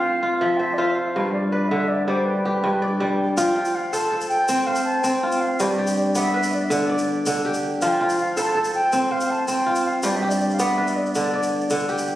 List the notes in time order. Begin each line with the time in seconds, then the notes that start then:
Already playing: F3 C4 D4 F4 G4 A4 C5 F5
0.23 F4
0.40 F3 E5
0.57 C5 E5 G5
0.74 D5 E5
0.78 F4 C5
0.94 F5
1.14 G2 F5
1.32 D5
1.51 B4 D5
1.69 D3 E5
1.88 D5
2.07 G3 C5 D5
2.25 B4
2.45 G4
2.64 G2
2.82 D5
3.00 G3 D5
3.37 F3 F4 G5, shaker
3.56 F4
3.65 shaker
3.75 F5
3.93 A4 C5 A5, shaker
4.12 A4
4.21 shaker
4.29 G5, shaker
4.48 C4, shaker
4.67 C5 F5
4.75 shaker
4.85 A5
5.03 C4 G5, shaker
5.23 F4
5.32 shaker
5.41 F5
5.60 G2 G4 D5, shaker
5.78 G4
5.87 shaker
5.97 D5, shaker
6.15 B3 D5 E5, shaker
6.34 B4
6.43 shaker
6.52 D5, shaker
6.63 E5
6.70 D3 D5, shaker
6.89 D5
6.98 shaker
7.26 D3, shaker
7.45 G4
7.54 shaker
7.82 F3 F4 A5, shaker
7.87 G5
8.01 F4
8.09 shaker
8.18 F5, shaker
8.37 A4 C5 B5, shaker
8.42 A5
8.55 A4
8.64 shaker
8.74 G5, shaker
8.92 C4, shaker
9.11 C5 F5
9.20 shaker
9.30 A5
9.48 C4 G5, shaker
9.66 F4
9.75 shaker
9.85 F5
10.03 G2 G4 D5, shaker
10.16 E5
10.22 G4
10.29 D5, shaker
10.40 D5, shaker
10.50 F5, shaker
10.59 B3 D5 E5 G5, shaker
10.78 B4
10.87 shaker
10.96 D5
11.06 shaker
11.15 D3 D5, shaker
11.34 D5
11.43 shaker
11.61 shaker
11.70 D3, shaker
11.80 shaker
11.89 G4, shaker
11.98 shaker
12.07 shaker